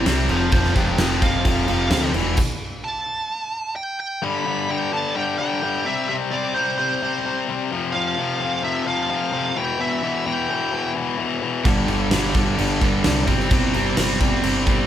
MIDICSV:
0, 0, Header, 1, 5, 480
1, 0, Start_track
1, 0, Tempo, 463679
1, 540, Time_signature, 4, 2, 24, 8
1, 15390, End_track
2, 0, Start_track
2, 0, Title_t, "Lead electric guitar"
2, 0, Program_c, 0, 29
2, 311, Note_on_c, 0, 72, 89
2, 320, Note_on_c, 0, 81, 104
2, 526, Note_off_c, 0, 72, 0
2, 534, Note_off_c, 0, 81, 0
2, 538, Note_on_c, 0, 72, 87
2, 546, Note_on_c, 0, 81, 94
2, 762, Note_off_c, 0, 72, 0
2, 776, Note_off_c, 0, 81, 0
2, 780, Note_on_c, 0, 71, 81
2, 787, Note_on_c, 0, 79, 89
2, 1004, Note_off_c, 0, 71, 0
2, 1014, Note_off_c, 0, 79, 0
2, 1025, Note_on_c, 0, 71, 85
2, 1033, Note_on_c, 0, 79, 104
2, 1245, Note_off_c, 0, 71, 0
2, 1259, Note_off_c, 0, 79, 0
2, 1270, Note_on_c, 0, 77, 113
2, 2194, Note_off_c, 0, 77, 0
2, 2941, Note_on_c, 0, 81, 120
2, 3869, Note_off_c, 0, 81, 0
2, 3892, Note_on_c, 0, 79, 91
2, 4126, Note_off_c, 0, 79, 0
2, 4142, Note_on_c, 0, 79, 103
2, 4371, Note_off_c, 0, 79, 0
2, 4385, Note_on_c, 0, 83, 114
2, 4872, Note_on_c, 0, 79, 109
2, 4873, Note_off_c, 0, 83, 0
2, 5100, Note_off_c, 0, 79, 0
2, 5104, Note_on_c, 0, 81, 101
2, 5322, Note_off_c, 0, 81, 0
2, 5341, Note_on_c, 0, 79, 108
2, 5566, Note_off_c, 0, 79, 0
2, 5578, Note_on_c, 0, 79, 110
2, 6067, Note_on_c, 0, 76, 92
2, 6070, Note_off_c, 0, 79, 0
2, 6284, Note_off_c, 0, 76, 0
2, 6303, Note_on_c, 0, 76, 103
2, 6366, Note_off_c, 0, 76, 0
2, 6536, Note_on_c, 0, 74, 83
2, 6758, Note_off_c, 0, 74, 0
2, 6771, Note_on_c, 0, 72, 90
2, 6995, Note_off_c, 0, 72, 0
2, 7017, Note_on_c, 0, 72, 82
2, 7693, Note_off_c, 0, 72, 0
2, 8203, Note_on_c, 0, 77, 105
2, 8946, Note_off_c, 0, 77, 0
2, 8950, Note_on_c, 0, 76, 93
2, 9184, Note_off_c, 0, 76, 0
2, 9188, Note_on_c, 0, 77, 111
2, 9910, Note_on_c, 0, 79, 105
2, 9922, Note_off_c, 0, 77, 0
2, 10148, Note_off_c, 0, 79, 0
2, 10151, Note_on_c, 0, 76, 108
2, 10620, Note_on_c, 0, 79, 93
2, 10637, Note_off_c, 0, 76, 0
2, 11296, Note_off_c, 0, 79, 0
2, 15390, End_track
3, 0, Start_track
3, 0, Title_t, "Distorted electric guitar"
3, 0, Program_c, 1, 30
3, 55, Note_on_c, 1, 48, 104
3, 63, Note_on_c, 1, 55, 114
3, 68, Note_on_c, 1, 60, 106
3, 283, Note_off_c, 1, 48, 0
3, 287, Note_off_c, 1, 55, 0
3, 290, Note_off_c, 1, 60, 0
3, 297, Note_on_c, 1, 41, 88
3, 306, Note_on_c, 1, 48, 99
3, 313, Note_on_c, 1, 53, 113
3, 530, Note_off_c, 1, 41, 0
3, 537, Note_off_c, 1, 48, 0
3, 542, Note_off_c, 1, 53, 0
3, 542, Note_on_c, 1, 41, 96
3, 549, Note_on_c, 1, 48, 95
3, 555, Note_on_c, 1, 53, 105
3, 769, Note_off_c, 1, 41, 0
3, 776, Note_off_c, 1, 48, 0
3, 778, Note_off_c, 1, 53, 0
3, 781, Note_on_c, 1, 41, 84
3, 788, Note_on_c, 1, 48, 95
3, 791, Note_on_c, 1, 53, 96
3, 1010, Note_off_c, 1, 41, 0
3, 1016, Note_off_c, 1, 48, 0
3, 1022, Note_off_c, 1, 53, 0
3, 1023, Note_on_c, 1, 41, 96
3, 1028, Note_on_c, 1, 48, 101
3, 1034, Note_on_c, 1, 53, 116
3, 1244, Note_off_c, 1, 41, 0
3, 1254, Note_off_c, 1, 48, 0
3, 1256, Note_on_c, 1, 41, 84
3, 1257, Note_off_c, 1, 53, 0
3, 1267, Note_on_c, 1, 48, 84
3, 1269, Note_on_c, 1, 53, 92
3, 1488, Note_off_c, 1, 41, 0
3, 1494, Note_off_c, 1, 48, 0
3, 1498, Note_off_c, 1, 53, 0
3, 1500, Note_on_c, 1, 41, 96
3, 1507, Note_on_c, 1, 48, 106
3, 1511, Note_on_c, 1, 53, 98
3, 1723, Note_off_c, 1, 41, 0
3, 1729, Note_off_c, 1, 48, 0
3, 1733, Note_off_c, 1, 53, 0
3, 1736, Note_on_c, 1, 41, 88
3, 1742, Note_on_c, 1, 48, 94
3, 1745, Note_on_c, 1, 53, 97
3, 1969, Note_off_c, 1, 41, 0
3, 1974, Note_off_c, 1, 48, 0
3, 1981, Note_off_c, 1, 53, 0
3, 1981, Note_on_c, 1, 41, 106
3, 1986, Note_on_c, 1, 48, 101
3, 1994, Note_on_c, 1, 53, 113
3, 2205, Note_off_c, 1, 41, 0
3, 2207, Note_off_c, 1, 48, 0
3, 2211, Note_off_c, 1, 53, 0
3, 2220, Note_on_c, 1, 40, 104
3, 2226, Note_on_c, 1, 47, 104
3, 2232, Note_on_c, 1, 52, 100
3, 2444, Note_off_c, 1, 40, 0
3, 2447, Note_off_c, 1, 47, 0
3, 2450, Note_off_c, 1, 52, 0
3, 4371, Note_on_c, 1, 43, 94
3, 4377, Note_on_c, 1, 50, 101
3, 4384, Note_on_c, 1, 55, 106
3, 4611, Note_off_c, 1, 43, 0
3, 4611, Note_off_c, 1, 50, 0
3, 4615, Note_on_c, 1, 43, 85
3, 4623, Note_off_c, 1, 55, 0
3, 4623, Note_on_c, 1, 50, 85
3, 4628, Note_on_c, 1, 55, 102
3, 4849, Note_off_c, 1, 50, 0
3, 4850, Note_off_c, 1, 43, 0
3, 4854, Note_on_c, 1, 43, 104
3, 4861, Note_on_c, 1, 50, 110
3, 4865, Note_off_c, 1, 55, 0
3, 4869, Note_on_c, 1, 55, 121
3, 5078, Note_off_c, 1, 43, 0
3, 5087, Note_off_c, 1, 50, 0
3, 5091, Note_on_c, 1, 43, 83
3, 5093, Note_off_c, 1, 55, 0
3, 5099, Note_on_c, 1, 50, 92
3, 5105, Note_on_c, 1, 55, 108
3, 5329, Note_off_c, 1, 43, 0
3, 5333, Note_off_c, 1, 50, 0
3, 5341, Note_on_c, 1, 43, 97
3, 5342, Note_off_c, 1, 55, 0
3, 5345, Note_on_c, 1, 50, 103
3, 5354, Note_on_c, 1, 55, 114
3, 5569, Note_off_c, 1, 43, 0
3, 5576, Note_off_c, 1, 50, 0
3, 5582, Note_on_c, 1, 43, 84
3, 5583, Note_off_c, 1, 55, 0
3, 5588, Note_on_c, 1, 50, 85
3, 5596, Note_on_c, 1, 55, 95
3, 5811, Note_off_c, 1, 43, 0
3, 5818, Note_off_c, 1, 50, 0
3, 5824, Note_off_c, 1, 55, 0
3, 5824, Note_on_c, 1, 43, 109
3, 5830, Note_on_c, 1, 50, 101
3, 5837, Note_on_c, 1, 55, 108
3, 6044, Note_off_c, 1, 43, 0
3, 6047, Note_off_c, 1, 50, 0
3, 6050, Note_off_c, 1, 55, 0
3, 6062, Note_on_c, 1, 48, 93
3, 6065, Note_on_c, 1, 55, 103
3, 6073, Note_on_c, 1, 60, 95
3, 6287, Note_off_c, 1, 48, 0
3, 6292, Note_off_c, 1, 55, 0
3, 6300, Note_on_c, 1, 48, 98
3, 6305, Note_on_c, 1, 55, 110
3, 6310, Note_off_c, 1, 60, 0
3, 6314, Note_on_c, 1, 60, 114
3, 6532, Note_off_c, 1, 48, 0
3, 6542, Note_off_c, 1, 55, 0
3, 6545, Note_on_c, 1, 48, 85
3, 6554, Note_on_c, 1, 55, 96
3, 6557, Note_off_c, 1, 60, 0
3, 6561, Note_on_c, 1, 60, 100
3, 6769, Note_off_c, 1, 48, 0
3, 6778, Note_off_c, 1, 55, 0
3, 6782, Note_on_c, 1, 48, 90
3, 6791, Note_on_c, 1, 55, 99
3, 6796, Note_off_c, 1, 60, 0
3, 6800, Note_on_c, 1, 60, 116
3, 7015, Note_off_c, 1, 48, 0
3, 7020, Note_off_c, 1, 55, 0
3, 7027, Note_on_c, 1, 48, 96
3, 7028, Note_off_c, 1, 60, 0
3, 7032, Note_on_c, 1, 55, 98
3, 7040, Note_on_c, 1, 60, 103
3, 7255, Note_off_c, 1, 48, 0
3, 7263, Note_off_c, 1, 55, 0
3, 7266, Note_off_c, 1, 60, 0
3, 7267, Note_on_c, 1, 48, 102
3, 7275, Note_on_c, 1, 55, 105
3, 7278, Note_on_c, 1, 60, 105
3, 7495, Note_off_c, 1, 48, 0
3, 7500, Note_off_c, 1, 55, 0
3, 7504, Note_off_c, 1, 60, 0
3, 7507, Note_on_c, 1, 48, 84
3, 7513, Note_on_c, 1, 55, 93
3, 7517, Note_on_c, 1, 60, 105
3, 7731, Note_off_c, 1, 48, 0
3, 7738, Note_off_c, 1, 55, 0
3, 7743, Note_on_c, 1, 48, 115
3, 7746, Note_off_c, 1, 60, 0
3, 7751, Note_on_c, 1, 55, 107
3, 7758, Note_on_c, 1, 60, 122
3, 7963, Note_off_c, 1, 48, 0
3, 7967, Note_off_c, 1, 55, 0
3, 7971, Note_off_c, 1, 60, 0
3, 7983, Note_on_c, 1, 41, 95
3, 7987, Note_on_c, 1, 48, 101
3, 7994, Note_on_c, 1, 53, 111
3, 8213, Note_off_c, 1, 41, 0
3, 8220, Note_off_c, 1, 48, 0
3, 8225, Note_on_c, 1, 41, 91
3, 8228, Note_off_c, 1, 53, 0
3, 8232, Note_on_c, 1, 48, 99
3, 8240, Note_on_c, 1, 53, 120
3, 8454, Note_off_c, 1, 41, 0
3, 8460, Note_off_c, 1, 48, 0
3, 8463, Note_off_c, 1, 53, 0
3, 8466, Note_on_c, 1, 41, 86
3, 8472, Note_on_c, 1, 48, 97
3, 8476, Note_on_c, 1, 53, 95
3, 8684, Note_off_c, 1, 41, 0
3, 8690, Note_off_c, 1, 48, 0
3, 8694, Note_off_c, 1, 53, 0
3, 8696, Note_on_c, 1, 41, 97
3, 8702, Note_on_c, 1, 48, 107
3, 8707, Note_on_c, 1, 53, 121
3, 8914, Note_off_c, 1, 41, 0
3, 8922, Note_off_c, 1, 48, 0
3, 8927, Note_on_c, 1, 41, 91
3, 8929, Note_off_c, 1, 53, 0
3, 8935, Note_on_c, 1, 48, 100
3, 8941, Note_on_c, 1, 53, 104
3, 9156, Note_off_c, 1, 41, 0
3, 9164, Note_off_c, 1, 48, 0
3, 9167, Note_off_c, 1, 53, 0
3, 9168, Note_on_c, 1, 41, 100
3, 9177, Note_on_c, 1, 48, 106
3, 9180, Note_on_c, 1, 53, 118
3, 9398, Note_off_c, 1, 41, 0
3, 9409, Note_off_c, 1, 48, 0
3, 9409, Note_off_c, 1, 53, 0
3, 9411, Note_on_c, 1, 41, 84
3, 9421, Note_on_c, 1, 48, 91
3, 9422, Note_on_c, 1, 53, 94
3, 9635, Note_off_c, 1, 41, 0
3, 9641, Note_off_c, 1, 48, 0
3, 9645, Note_off_c, 1, 53, 0
3, 9647, Note_on_c, 1, 41, 109
3, 9654, Note_on_c, 1, 48, 104
3, 9658, Note_on_c, 1, 53, 114
3, 9876, Note_off_c, 1, 41, 0
3, 9879, Note_off_c, 1, 48, 0
3, 9881, Note_off_c, 1, 53, 0
3, 9891, Note_on_c, 1, 40, 90
3, 9901, Note_on_c, 1, 47, 102
3, 9903, Note_on_c, 1, 52, 100
3, 10119, Note_off_c, 1, 40, 0
3, 10127, Note_off_c, 1, 47, 0
3, 10130, Note_off_c, 1, 52, 0
3, 10131, Note_on_c, 1, 40, 104
3, 10139, Note_on_c, 1, 47, 99
3, 10142, Note_on_c, 1, 52, 100
3, 10364, Note_off_c, 1, 40, 0
3, 10369, Note_off_c, 1, 47, 0
3, 10375, Note_off_c, 1, 52, 0
3, 10376, Note_on_c, 1, 40, 94
3, 10381, Note_on_c, 1, 47, 87
3, 10387, Note_on_c, 1, 52, 100
3, 10607, Note_off_c, 1, 40, 0
3, 10611, Note_off_c, 1, 47, 0
3, 10619, Note_on_c, 1, 40, 104
3, 10620, Note_off_c, 1, 52, 0
3, 10624, Note_on_c, 1, 47, 96
3, 10632, Note_on_c, 1, 52, 117
3, 10848, Note_off_c, 1, 40, 0
3, 10858, Note_off_c, 1, 47, 0
3, 10861, Note_on_c, 1, 40, 82
3, 10862, Note_off_c, 1, 52, 0
3, 10871, Note_on_c, 1, 47, 94
3, 10874, Note_on_c, 1, 52, 96
3, 11084, Note_off_c, 1, 40, 0
3, 11090, Note_off_c, 1, 47, 0
3, 11096, Note_on_c, 1, 40, 98
3, 11100, Note_off_c, 1, 52, 0
3, 11103, Note_on_c, 1, 47, 108
3, 11112, Note_on_c, 1, 52, 105
3, 11322, Note_off_c, 1, 40, 0
3, 11328, Note_off_c, 1, 47, 0
3, 11334, Note_on_c, 1, 40, 95
3, 11335, Note_off_c, 1, 52, 0
3, 11341, Note_on_c, 1, 47, 92
3, 11348, Note_on_c, 1, 52, 89
3, 11562, Note_off_c, 1, 40, 0
3, 11570, Note_off_c, 1, 47, 0
3, 11575, Note_on_c, 1, 40, 101
3, 11576, Note_off_c, 1, 52, 0
3, 11583, Note_on_c, 1, 47, 108
3, 11588, Note_on_c, 1, 52, 110
3, 11803, Note_off_c, 1, 40, 0
3, 11811, Note_off_c, 1, 47, 0
3, 11813, Note_off_c, 1, 52, 0
3, 11816, Note_on_c, 1, 40, 76
3, 11823, Note_on_c, 1, 47, 84
3, 11825, Note_on_c, 1, 52, 80
3, 12041, Note_off_c, 1, 40, 0
3, 12045, Note_off_c, 1, 47, 0
3, 12046, Note_off_c, 1, 52, 0
3, 12054, Note_on_c, 1, 43, 94
3, 12061, Note_on_c, 1, 50, 104
3, 12068, Note_on_c, 1, 55, 108
3, 12290, Note_off_c, 1, 50, 0
3, 12293, Note_off_c, 1, 43, 0
3, 12298, Note_on_c, 1, 43, 95
3, 12303, Note_off_c, 1, 55, 0
3, 12303, Note_on_c, 1, 50, 94
3, 12307, Note_on_c, 1, 55, 96
3, 12539, Note_off_c, 1, 43, 0
3, 12539, Note_off_c, 1, 50, 0
3, 12543, Note_on_c, 1, 43, 104
3, 12551, Note_off_c, 1, 55, 0
3, 12551, Note_on_c, 1, 50, 104
3, 12555, Note_on_c, 1, 55, 126
3, 12767, Note_off_c, 1, 43, 0
3, 12775, Note_off_c, 1, 50, 0
3, 12780, Note_on_c, 1, 43, 91
3, 12781, Note_off_c, 1, 55, 0
3, 12787, Note_on_c, 1, 50, 95
3, 12793, Note_on_c, 1, 55, 86
3, 13004, Note_off_c, 1, 43, 0
3, 13012, Note_off_c, 1, 50, 0
3, 13016, Note_off_c, 1, 55, 0
3, 13016, Note_on_c, 1, 43, 91
3, 13025, Note_on_c, 1, 50, 104
3, 13028, Note_on_c, 1, 55, 110
3, 13248, Note_off_c, 1, 43, 0
3, 13258, Note_off_c, 1, 50, 0
3, 13260, Note_on_c, 1, 43, 79
3, 13264, Note_off_c, 1, 55, 0
3, 13270, Note_on_c, 1, 50, 94
3, 13276, Note_on_c, 1, 55, 87
3, 13489, Note_off_c, 1, 43, 0
3, 13497, Note_off_c, 1, 50, 0
3, 13501, Note_on_c, 1, 43, 101
3, 13502, Note_off_c, 1, 55, 0
3, 13510, Note_on_c, 1, 50, 112
3, 13514, Note_on_c, 1, 55, 123
3, 13725, Note_off_c, 1, 43, 0
3, 13729, Note_off_c, 1, 50, 0
3, 13731, Note_off_c, 1, 55, 0
3, 13735, Note_on_c, 1, 48, 93
3, 13744, Note_on_c, 1, 55, 96
3, 13749, Note_on_c, 1, 60, 113
3, 13968, Note_off_c, 1, 48, 0
3, 13975, Note_off_c, 1, 55, 0
3, 13980, Note_on_c, 1, 48, 110
3, 13988, Note_on_c, 1, 55, 100
3, 13990, Note_off_c, 1, 60, 0
3, 13994, Note_on_c, 1, 60, 105
3, 14208, Note_off_c, 1, 48, 0
3, 14215, Note_off_c, 1, 55, 0
3, 14220, Note_on_c, 1, 48, 98
3, 14228, Note_on_c, 1, 55, 103
3, 14231, Note_off_c, 1, 60, 0
3, 14235, Note_on_c, 1, 60, 98
3, 14448, Note_off_c, 1, 48, 0
3, 14457, Note_off_c, 1, 55, 0
3, 14460, Note_on_c, 1, 48, 104
3, 14468, Note_off_c, 1, 60, 0
3, 14469, Note_on_c, 1, 55, 108
3, 14472, Note_on_c, 1, 60, 116
3, 14678, Note_off_c, 1, 48, 0
3, 14688, Note_off_c, 1, 55, 0
3, 14691, Note_on_c, 1, 48, 86
3, 14692, Note_off_c, 1, 60, 0
3, 14700, Note_on_c, 1, 55, 95
3, 14704, Note_on_c, 1, 60, 96
3, 14924, Note_off_c, 1, 48, 0
3, 14931, Note_off_c, 1, 55, 0
3, 14934, Note_off_c, 1, 60, 0
3, 14937, Note_on_c, 1, 48, 99
3, 14944, Note_on_c, 1, 55, 98
3, 14947, Note_on_c, 1, 60, 105
3, 15170, Note_off_c, 1, 48, 0
3, 15177, Note_off_c, 1, 55, 0
3, 15177, Note_off_c, 1, 60, 0
3, 15182, Note_on_c, 1, 48, 83
3, 15189, Note_on_c, 1, 55, 90
3, 15190, Note_on_c, 1, 60, 91
3, 15390, Note_off_c, 1, 48, 0
3, 15390, Note_off_c, 1, 55, 0
3, 15390, Note_off_c, 1, 60, 0
3, 15390, End_track
4, 0, Start_track
4, 0, Title_t, "Picked electric bass"
4, 0, Program_c, 2, 34
4, 64, Note_on_c, 2, 36, 89
4, 290, Note_off_c, 2, 36, 0
4, 300, Note_on_c, 2, 29, 91
4, 528, Note_off_c, 2, 29, 0
4, 547, Note_on_c, 2, 29, 105
4, 772, Note_off_c, 2, 29, 0
4, 783, Note_on_c, 2, 29, 89
4, 1009, Note_off_c, 2, 29, 0
4, 1013, Note_on_c, 2, 29, 93
4, 1244, Note_off_c, 2, 29, 0
4, 1265, Note_on_c, 2, 29, 88
4, 1490, Note_off_c, 2, 29, 0
4, 1504, Note_on_c, 2, 29, 89
4, 1729, Note_off_c, 2, 29, 0
4, 1739, Note_on_c, 2, 29, 88
4, 1966, Note_off_c, 2, 29, 0
4, 1976, Note_on_c, 2, 38, 88
4, 2204, Note_off_c, 2, 38, 0
4, 2216, Note_on_c, 2, 28, 92
4, 2444, Note_off_c, 2, 28, 0
4, 12064, Note_on_c, 2, 31, 95
4, 12288, Note_off_c, 2, 31, 0
4, 12295, Note_on_c, 2, 31, 96
4, 12523, Note_off_c, 2, 31, 0
4, 12545, Note_on_c, 2, 31, 87
4, 12769, Note_off_c, 2, 31, 0
4, 12786, Note_on_c, 2, 31, 94
4, 13009, Note_off_c, 2, 31, 0
4, 13037, Note_on_c, 2, 31, 91
4, 13255, Note_off_c, 2, 31, 0
4, 13270, Note_on_c, 2, 31, 88
4, 13492, Note_off_c, 2, 31, 0
4, 13512, Note_on_c, 2, 36, 100
4, 13733, Note_off_c, 2, 36, 0
4, 13747, Note_on_c, 2, 31, 92
4, 13970, Note_off_c, 2, 31, 0
4, 13986, Note_on_c, 2, 31, 99
4, 14210, Note_off_c, 2, 31, 0
4, 14230, Note_on_c, 2, 31, 96
4, 14453, Note_off_c, 2, 31, 0
4, 14464, Note_on_c, 2, 31, 88
4, 14689, Note_off_c, 2, 31, 0
4, 14708, Note_on_c, 2, 31, 97
4, 14932, Note_off_c, 2, 31, 0
4, 14941, Note_on_c, 2, 31, 98
4, 15168, Note_off_c, 2, 31, 0
4, 15187, Note_on_c, 2, 31, 94
4, 15390, Note_off_c, 2, 31, 0
4, 15390, End_track
5, 0, Start_track
5, 0, Title_t, "Drums"
5, 63, Note_on_c, 9, 38, 112
5, 63, Note_on_c, 9, 49, 89
5, 167, Note_off_c, 9, 38, 0
5, 167, Note_off_c, 9, 49, 0
5, 300, Note_on_c, 9, 49, 63
5, 404, Note_off_c, 9, 49, 0
5, 536, Note_on_c, 9, 49, 83
5, 543, Note_on_c, 9, 36, 114
5, 639, Note_off_c, 9, 49, 0
5, 646, Note_off_c, 9, 36, 0
5, 660, Note_on_c, 9, 38, 37
5, 763, Note_off_c, 9, 38, 0
5, 784, Note_on_c, 9, 36, 92
5, 784, Note_on_c, 9, 49, 62
5, 887, Note_off_c, 9, 49, 0
5, 888, Note_off_c, 9, 36, 0
5, 1019, Note_on_c, 9, 38, 117
5, 1019, Note_on_c, 9, 49, 84
5, 1122, Note_off_c, 9, 38, 0
5, 1122, Note_off_c, 9, 49, 0
5, 1264, Note_on_c, 9, 36, 100
5, 1264, Note_on_c, 9, 49, 79
5, 1367, Note_off_c, 9, 36, 0
5, 1367, Note_off_c, 9, 49, 0
5, 1500, Note_on_c, 9, 49, 90
5, 1503, Note_on_c, 9, 36, 93
5, 1603, Note_off_c, 9, 49, 0
5, 1606, Note_off_c, 9, 36, 0
5, 1738, Note_on_c, 9, 49, 70
5, 1842, Note_off_c, 9, 49, 0
5, 1974, Note_on_c, 9, 38, 111
5, 1974, Note_on_c, 9, 49, 91
5, 2078, Note_off_c, 9, 38, 0
5, 2078, Note_off_c, 9, 49, 0
5, 2216, Note_on_c, 9, 49, 73
5, 2320, Note_off_c, 9, 49, 0
5, 2451, Note_on_c, 9, 57, 110
5, 2460, Note_on_c, 9, 36, 106
5, 2555, Note_off_c, 9, 57, 0
5, 2563, Note_off_c, 9, 36, 0
5, 12060, Note_on_c, 9, 49, 85
5, 12062, Note_on_c, 9, 36, 127
5, 12163, Note_off_c, 9, 49, 0
5, 12165, Note_off_c, 9, 36, 0
5, 12299, Note_on_c, 9, 49, 62
5, 12403, Note_off_c, 9, 49, 0
5, 12538, Note_on_c, 9, 38, 122
5, 12538, Note_on_c, 9, 49, 86
5, 12642, Note_off_c, 9, 38, 0
5, 12642, Note_off_c, 9, 49, 0
5, 12777, Note_on_c, 9, 49, 71
5, 12783, Note_on_c, 9, 36, 93
5, 12881, Note_off_c, 9, 49, 0
5, 12886, Note_off_c, 9, 36, 0
5, 13029, Note_on_c, 9, 49, 89
5, 13132, Note_off_c, 9, 49, 0
5, 13266, Note_on_c, 9, 36, 88
5, 13266, Note_on_c, 9, 49, 67
5, 13369, Note_off_c, 9, 36, 0
5, 13369, Note_off_c, 9, 49, 0
5, 13502, Note_on_c, 9, 38, 118
5, 13502, Note_on_c, 9, 49, 93
5, 13606, Note_off_c, 9, 38, 0
5, 13606, Note_off_c, 9, 49, 0
5, 13741, Note_on_c, 9, 49, 68
5, 13745, Note_on_c, 9, 36, 86
5, 13844, Note_off_c, 9, 49, 0
5, 13848, Note_off_c, 9, 36, 0
5, 13866, Note_on_c, 9, 38, 33
5, 13970, Note_off_c, 9, 38, 0
5, 13982, Note_on_c, 9, 49, 99
5, 13986, Note_on_c, 9, 36, 122
5, 14085, Note_off_c, 9, 49, 0
5, 14089, Note_off_c, 9, 36, 0
5, 14225, Note_on_c, 9, 49, 70
5, 14328, Note_off_c, 9, 49, 0
5, 14463, Note_on_c, 9, 38, 120
5, 14463, Note_on_c, 9, 49, 103
5, 14567, Note_off_c, 9, 38, 0
5, 14567, Note_off_c, 9, 49, 0
5, 14706, Note_on_c, 9, 49, 77
5, 14707, Note_on_c, 9, 36, 96
5, 14809, Note_off_c, 9, 49, 0
5, 14810, Note_off_c, 9, 36, 0
5, 14943, Note_on_c, 9, 49, 96
5, 15047, Note_off_c, 9, 49, 0
5, 15184, Note_on_c, 9, 49, 64
5, 15185, Note_on_c, 9, 36, 96
5, 15287, Note_off_c, 9, 49, 0
5, 15288, Note_off_c, 9, 36, 0
5, 15390, End_track
0, 0, End_of_file